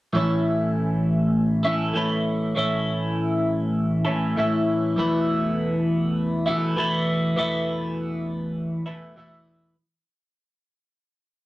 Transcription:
0.13 A2 E3 A3 C#4 E4
0.17 A4
1.63 E3 A3 C#4 E4 A4
1.67 A2
1.93 A2 E3 A3 C#4 E4 A4
2.55 A2 E3 A3 C#4 E4 A4
4.05 A2 E3 A3 C#4 E4 A4
4.36 A2 E3 A3 C#4 E4 A4
4.96 E2 B2 E3 A3 B3 E4
6.46 E2 B2 E3 A3 B3 E4
6.76 E2 B2 E3 A3 B3 E4
7.36 E2 B2 E3 A3 B3 E4
8.86 E2 B2 E3 A3 B3 E4
9.16 E2 B2 E3 A3 B3 E4

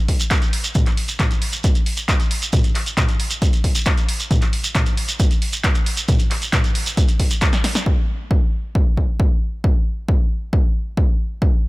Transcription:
0.08 kick, open hi-hat
0.20 closed hi-hat, shekere
0.31 kick, clap, closed hi-hat, shekere
0.42 closed hi-hat, shekere
0.53 open hi-hat
0.64 closed hi-hat, shekere
0.75 kick, closed hi-hat, mid tom, shekere
0.86 clap, closed hi-hat, shekere
0.97 open hi-hat
1.08 closed hi-hat, shekere
1.20 kick, clap, closed hi-hat, mid tom, shekere
1.31 closed hi-hat, shekere
1.42 open hi-hat
1.52 closed hi-hat, shekere
1.64 kick, closed hi-hat, shekere
1.75 closed hi-hat, shekere
1.86 open hi-hat
1.97 closed hi-hat, shekere
2.09 kick, clap, closed hi-hat, shekere
2.20 closed hi-hat, shekere
2.31 open hi-hat
2.42 closed hi-hat, shekere
2.53 kick, closed hi-hat, mid tom, shekere
2.64 closed hi-hat, shekere
2.75 clap, open hi-hat
2.86 closed hi-hat, shekere
2.97 kick, clap, closed hi-hat, mid tom, shekere
3.09 closed hi-hat, shekere
3.20 open hi-hat
3.30 closed hi-hat, shekere
3.42 kick, closed hi-hat, shekere
3.53 closed hi-hat, shekere
3.64 kick, open hi-hat
3.75 closed hi-hat, shekere
3.86 kick, clap, closed hi-hat, shekere
3.98 closed hi-hat, shekere
4.09 open hi-hat
4.20 closed hi-hat, shekere
4.31 kick, closed hi-hat, mid tom, shekere
4.42 clap, closed hi-hat, shekere
4.53 open hi-hat
4.64 closed hi-hat, shekere
4.75 kick, clap, closed hi-hat, mid tom, shekere
4.86 closed hi-hat, shekere
4.97 open hi-hat
5.08 closed hi-hat, shekere
5.19 kick, closed hi-hat, shekere
5.31 closed hi-hat, shekere
5.42 open hi-hat
5.53 closed hi-hat, shekere
5.64 kick, clap, closed hi-hat, shekere
5.75 closed hi-hat, shekere
5.86 open hi-hat
5.97 closed hi-hat, shekere
6.08 kick, closed hi-hat, mid tom, shekere
6.19 closed hi-hat, shekere
6.31 clap, open hi-hat
6.42 closed hi-hat, shekere
6.53 kick, clap, closed hi-hat, mid tom, shekere
6.64 closed hi-hat, shekere
6.75 open hi-hat
6.86 closed hi-hat, shekere
6.97 kick, closed hi-hat, shekere
7.08 closed hi-hat, shekere
7.20 kick, open hi-hat
7.31 closed hi-hat, shekere
7.41 kick, clap, closed hi-hat, shekere
7.53 snare, closed hi-hat, shekere
7.64 snare, open hi-hat
7.75 snare, closed hi-hat, shekere
7.86 kick
8.31 kick
8.75 kick
8.97 kick
9.20 kick
9.64 kick
10.09 kick
10.53 kick
10.97 kick
11.42 kick

